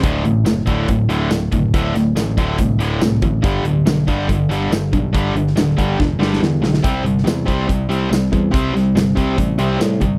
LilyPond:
<<
  \new Staff \with { instrumentName = "Distorted electric guitar" } { \clef bass \time 4/4 \key g \major \tempo 4 = 141 <d, a, d>8 <d, a,>8 <d, a,>8 <d, a, d>8 <d, a,>8 <d, a, d>8 <d, a,>8 <d, a,>8 | <d, a, d>8 <d, a,>8 <d, a,>8 <d, a, d>8 <d, a,>8 <d, a, d>8 <d, a,>8 <d, a,>8 | <g, d g>8 <g, d>8 <g, d>8 <g, d g>8 <g, d>8 <g, d g>8 <g, d>8 <g, d>8 | <g, d g>8 <g, d>8 <g, d>8 <g, d g>8 <g, d>8 <g, d g>8 <g, d>8 <g, d>8 |
<c g c'>8 <c g>8 <c g>8 <c g c'>8 <c g>8 <c g c'>8 <c g>8 <c g>8 | <c g c'>8 <c g>8 <c g>8 <c g c'>8 <c g>8 <c g c'>8 <c g>8 <c g>8 | }
  \new Staff \with { instrumentName = "Distorted electric guitar" } { \clef bass \time 4/4 \key g \major <d, a, d>8 <d, a,>8 <d, a,>8 <d, a, d>8 <d, a,>8 <d, a, d>8 <d, a,>8 <d, a,>8 | <d, a, d>8 <d, a,>8 <d, a,>8 <d, a, d>8 <d, a,>8 <d, a, d>8 <d, a,>8 <d, a,>8 | <g, d g>8 <g, d>8 <g, d>8 <g, d g>8 <g, d>8 <g, d g>8 <g, d>8 <g, d>8 | <g, d g>8 <g, d>8 <g, d>8 <g, d g>8 <g, d>8 <g, d g>8 <g, d>8 <g, d>8 |
<c g c'>8 <c g>8 <c g>8 <c g c'>8 <c g>8 <c g c'>8 <c g>8 <c g>8 | <c g c'>8 <c g>8 <c g>8 <c g c'>8 <c g>8 <c g c'>8 <c g>8 <c g>8 | }
  \new Staff \with { instrumentName = "Picked electric bass" } { \clef bass \time 4/4 \key g \major d,,8 a,,8 fis,,8 d,,8 d,,8 d,,8 d,,8 fis,,8 | d,,8 d,,8 a,,8 d,,8 c,8 d,,8 c,8 a,,8 | g,,8 d,,8 b,,8 g,,8 g,,8 g,,8 g,,8 b,,8 | g,,8 g,,8 d,,8 g,,8 e,,8 g,,8 e,8 b,,8 |
c,8 g,,8 e,8 c,8 c,8 c,8 c,8 e,8 | c,8 c,8 g,,8 c,8 a,,8 c,8 a,8 g,,8 | }
  \new DrumStaff \with { instrumentName = "Drums" } \drummode { \time 4/4 <hh bd>8 hh8 <hh sn tamb>8 <hh bd>8 <hh bd>8 hh8 <hh sn tamb>8 <hh bd>8 | <hh bd>8 <hh sn>8 <hh sn tamb>8 <hh bd>8 <hh bd>8 hh8 <hh sn tamb>8 <hh bd>8 | <hh bd>8 hh8 <hh sn tamb>8 <hh bd>8 <hh bd>8 hh8 <hh sn tamb>8 <hh bd>8 | <hh bd>8 hh16 sn16 <hh sn tamb>8 <hh bd>8 <bd sn>8 sn16 sn16 sn8 sn16 sn16 |
<hh bd>8 hh16 sn16 <hh sn tamb>8 <hh bd>8 <hh bd>8 hh8 <hh sn tamb>8 <hh bd>8 | <hh bd>8 <hh sn>8 <hh sn tamb>8 <hh bd>8 <hh bd>8 hh8 <hh sn tamb>8 <hh bd>8 | }
>>